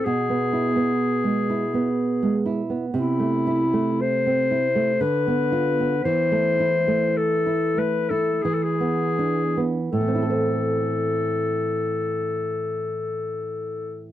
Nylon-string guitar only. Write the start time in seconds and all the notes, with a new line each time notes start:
0.06 B2
0.29 B3
0.53 E4
0.76 B3
1.24 G#3
1.50 E4
1.74 B3
2.23 G#3
2.46 E4
2.70 B3
2.94 C3
3.19 A3
3.47 E4
3.73 A3
4.26 C4
4.51 E4
4.75 A3
5.01 D3
5.27 B3
5.52 F4
5.80 B3
6.05 E3
6.32 A3
6.59 E4
6.88 A3
7.46 E4
7.77 A3
8.11 E4
8.45 E3
8.80 B3
9.19 D4
9.57 B3
9.93 A2
10.00 E3
10.08 C4
10.15 E4
10.22 A4
10.30 C5